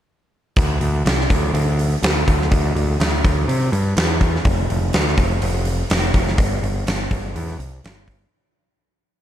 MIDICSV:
0, 0, Header, 1, 3, 480
1, 0, Start_track
1, 0, Tempo, 484262
1, 564, Time_signature, 4, 2, 24, 8
1, 9136, End_track
2, 0, Start_track
2, 0, Title_t, "Picked electric bass"
2, 0, Program_c, 0, 34
2, 563, Note_on_c, 0, 38, 85
2, 767, Note_off_c, 0, 38, 0
2, 795, Note_on_c, 0, 38, 79
2, 1003, Note_off_c, 0, 38, 0
2, 1044, Note_on_c, 0, 36, 91
2, 1249, Note_off_c, 0, 36, 0
2, 1286, Note_on_c, 0, 38, 92
2, 1490, Note_off_c, 0, 38, 0
2, 1520, Note_on_c, 0, 38, 82
2, 1930, Note_off_c, 0, 38, 0
2, 2007, Note_on_c, 0, 38, 90
2, 2211, Note_off_c, 0, 38, 0
2, 2258, Note_on_c, 0, 38, 95
2, 2458, Note_off_c, 0, 38, 0
2, 2489, Note_on_c, 0, 38, 87
2, 2693, Note_off_c, 0, 38, 0
2, 2728, Note_on_c, 0, 38, 88
2, 2933, Note_off_c, 0, 38, 0
2, 2972, Note_on_c, 0, 38, 90
2, 3175, Note_off_c, 0, 38, 0
2, 3213, Note_on_c, 0, 38, 87
2, 3416, Note_off_c, 0, 38, 0
2, 3446, Note_on_c, 0, 48, 87
2, 3651, Note_off_c, 0, 48, 0
2, 3691, Note_on_c, 0, 43, 89
2, 3894, Note_off_c, 0, 43, 0
2, 3931, Note_on_c, 0, 40, 95
2, 4336, Note_off_c, 0, 40, 0
2, 4408, Note_on_c, 0, 29, 98
2, 4612, Note_off_c, 0, 29, 0
2, 4660, Note_on_c, 0, 29, 82
2, 4859, Note_off_c, 0, 29, 0
2, 4898, Note_on_c, 0, 38, 91
2, 5097, Note_off_c, 0, 38, 0
2, 5124, Note_on_c, 0, 29, 97
2, 5329, Note_off_c, 0, 29, 0
2, 5370, Note_on_c, 0, 29, 91
2, 5774, Note_off_c, 0, 29, 0
2, 5853, Note_on_c, 0, 29, 89
2, 6053, Note_off_c, 0, 29, 0
2, 6083, Note_on_c, 0, 29, 92
2, 6287, Note_off_c, 0, 29, 0
2, 6320, Note_on_c, 0, 31, 96
2, 6525, Note_off_c, 0, 31, 0
2, 6565, Note_on_c, 0, 31, 92
2, 6768, Note_off_c, 0, 31, 0
2, 6804, Note_on_c, 0, 31, 87
2, 7007, Note_off_c, 0, 31, 0
2, 7044, Note_on_c, 0, 31, 97
2, 7247, Note_off_c, 0, 31, 0
2, 7290, Note_on_c, 0, 40, 90
2, 7490, Note_off_c, 0, 40, 0
2, 7521, Note_on_c, 0, 36, 88
2, 7725, Note_off_c, 0, 36, 0
2, 7771, Note_on_c, 0, 31, 93
2, 8173, Note_off_c, 0, 31, 0
2, 9136, End_track
3, 0, Start_track
3, 0, Title_t, "Drums"
3, 557, Note_on_c, 9, 46, 74
3, 562, Note_on_c, 9, 36, 112
3, 656, Note_off_c, 9, 46, 0
3, 661, Note_off_c, 9, 36, 0
3, 803, Note_on_c, 9, 46, 58
3, 902, Note_off_c, 9, 46, 0
3, 1051, Note_on_c, 9, 46, 75
3, 1063, Note_on_c, 9, 38, 99
3, 1150, Note_off_c, 9, 46, 0
3, 1162, Note_off_c, 9, 38, 0
3, 1192, Note_on_c, 9, 38, 31
3, 1291, Note_off_c, 9, 38, 0
3, 1291, Note_on_c, 9, 36, 90
3, 1299, Note_on_c, 9, 46, 65
3, 1390, Note_off_c, 9, 36, 0
3, 1398, Note_off_c, 9, 46, 0
3, 1534, Note_on_c, 9, 46, 76
3, 1633, Note_off_c, 9, 46, 0
3, 1776, Note_on_c, 9, 46, 61
3, 1875, Note_off_c, 9, 46, 0
3, 2014, Note_on_c, 9, 46, 89
3, 2026, Note_on_c, 9, 38, 127
3, 2113, Note_off_c, 9, 46, 0
3, 2125, Note_off_c, 9, 38, 0
3, 2258, Note_on_c, 9, 36, 83
3, 2261, Note_on_c, 9, 46, 61
3, 2357, Note_off_c, 9, 36, 0
3, 2360, Note_off_c, 9, 46, 0
3, 2395, Note_on_c, 9, 38, 33
3, 2493, Note_on_c, 9, 46, 76
3, 2494, Note_off_c, 9, 38, 0
3, 2495, Note_on_c, 9, 36, 105
3, 2592, Note_off_c, 9, 46, 0
3, 2595, Note_off_c, 9, 36, 0
3, 2740, Note_on_c, 9, 46, 59
3, 2839, Note_off_c, 9, 46, 0
3, 2976, Note_on_c, 9, 46, 74
3, 2988, Note_on_c, 9, 38, 101
3, 3075, Note_off_c, 9, 46, 0
3, 3087, Note_off_c, 9, 38, 0
3, 3217, Note_on_c, 9, 36, 88
3, 3224, Note_on_c, 9, 46, 57
3, 3316, Note_off_c, 9, 36, 0
3, 3323, Note_off_c, 9, 46, 0
3, 3462, Note_on_c, 9, 46, 77
3, 3561, Note_off_c, 9, 46, 0
3, 3698, Note_on_c, 9, 46, 57
3, 3797, Note_off_c, 9, 46, 0
3, 3934, Note_on_c, 9, 46, 81
3, 3945, Note_on_c, 9, 38, 122
3, 4033, Note_off_c, 9, 46, 0
3, 4045, Note_off_c, 9, 38, 0
3, 4172, Note_on_c, 9, 46, 52
3, 4173, Note_on_c, 9, 36, 85
3, 4271, Note_off_c, 9, 46, 0
3, 4272, Note_off_c, 9, 36, 0
3, 4318, Note_on_c, 9, 38, 31
3, 4410, Note_on_c, 9, 46, 70
3, 4413, Note_on_c, 9, 36, 108
3, 4417, Note_off_c, 9, 38, 0
3, 4509, Note_off_c, 9, 46, 0
3, 4512, Note_off_c, 9, 36, 0
3, 4660, Note_on_c, 9, 46, 57
3, 4759, Note_off_c, 9, 46, 0
3, 4887, Note_on_c, 9, 46, 68
3, 4899, Note_on_c, 9, 38, 104
3, 4986, Note_off_c, 9, 46, 0
3, 4998, Note_off_c, 9, 38, 0
3, 5033, Note_on_c, 9, 38, 29
3, 5130, Note_on_c, 9, 46, 63
3, 5132, Note_off_c, 9, 38, 0
3, 5132, Note_on_c, 9, 36, 90
3, 5229, Note_off_c, 9, 46, 0
3, 5231, Note_off_c, 9, 36, 0
3, 5372, Note_on_c, 9, 46, 75
3, 5471, Note_off_c, 9, 46, 0
3, 5603, Note_on_c, 9, 46, 59
3, 5702, Note_off_c, 9, 46, 0
3, 5848, Note_on_c, 9, 46, 89
3, 5860, Note_on_c, 9, 38, 122
3, 5947, Note_off_c, 9, 46, 0
3, 5959, Note_off_c, 9, 38, 0
3, 6088, Note_on_c, 9, 36, 83
3, 6088, Note_on_c, 9, 46, 61
3, 6187, Note_off_c, 9, 36, 0
3, 6187, Note_off_c, 9, 46, 0
3, 6220, Note_on_c, 9, 38, 32
3, 6319, Note_off_c, 9, 38, 0
3, 6327, Note_on_c, 9, 36, 109
3, 6329, Note_on_c, 9, 46, 83
3, 6426, Note_off_c, 9, 36, 0
3, 6428, Note_off_c, 9, 46, 0
3, 6578, Note_on_c, 9, 46, 61
3, 6677, Note_off_c, 9, 46, 0
3, 6810, Note_on_c, 9, 46, 68
3, 6821, Note_on_c, 9, 38, 98
3, 6909, Note_off_c, 9, 46, 0
3, 6921, Note_off_c, 9, 38, 0
3, 7047, Note_on_c, 9, 36, 88
3, 7048, Note_on_c, 9, 46, 64
3, 7147, Note_off_c, 9, 36, 0
3, 7147, Note_off_c, 9, 46, 0
3, 7294, Note_on_c, 9, 46, 70
3, 7393, Note_off_c, 9, 46, 0
3, 7534, Note_on_c, 9, 46, 56
3, 7633, Note_off_c, 9, 46, 0
3, 7775, Note_on_c, 9, 46, 82
3, 7787, Note_on_c, 9, 38, 117
3, 7874, Note_off_c, 9, 46, 0
3, 7886, Note_off_c, 9, 38, 0
3, 8007, Note_on_c, 9, 36, 83
3, 8013, Note_on_c, 9, 46, 57
3, 8106, Note_off_c, 9, 36, 0
3, 8112, Note_off_c, 9, 46, 0
3, 9136, End_track
0, 0, End_of_file